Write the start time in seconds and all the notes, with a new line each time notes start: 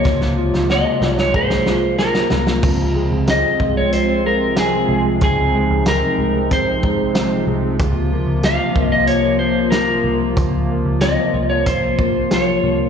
Already playing: C3 F3 A#3 C4 F4 C#5
0.04 C#2 G#3, kick, snare
0.21 snare
0.37 F4
0.53 C#2, snare
0.69 F#4 D#5, snare
0.85 G#4
1.01 C2 F4, snare
1.18 C#5, snare
1.34 G#4 C5, kick
1.50 snare
1.66 F4, snare
1.98 A#3 A#4, snare
2.14 snare
2.30 C2 F4, snare
2.47 snare
2.63 C#2 C3 F3 G#3 C4 F4, kick, crash
2.95 G#3
3.12 C#2
3.27 C4 D#5, snare, closed hi-hat, tambourine
3.60 C2 G#3, kick
3.77 C#5
3.92 C4 C5, closed hi-hat
4.24 G#3 A#4
4.56 F3 G#4, snare, closed hi-hat, tambourine
4.89 C2 G#3
5.21 C#2 D#4 G#4, kick, closed hi-hat
5.54 G#3
5.71 C#2
5.86 C4 A#4, snare, closed hi-hat, tambourine
6.18 C2 G#3
6.51 C4 C5, kick, closed hi-hat
6.82 G#3, kick
7.15 F3, snare, closed hi-hat, tambourine
7.47 C2 G#3
7.79 C#2 A#3 F4, kick, closed hi-hat
8.12 A#3
8.27 C#2
8.43 C4 F5, snare, closed hi-hat, tambourine
8.76 C2 A#3, kick
8.92 D#5
9.07 C#5, closed hi-hat
9.39 A#3 C5
9.71 F3 A#4, snare, closed hi-hat, tambourine
10.04 C2 A#3
10.37 C#2, kick, closed hi-hat
10.70 A#3
10.85 C#2
11.01 C4 D#5, snare, closed hi-hat, tambourine
11.34 C2 A#3
11.50 C#5
11.66 C5, kick, closed hi-hat
11.99 A#3, kick
12.31 F3 C#5, snare, closed hi-hat, tambourine
12.63 C2 A#3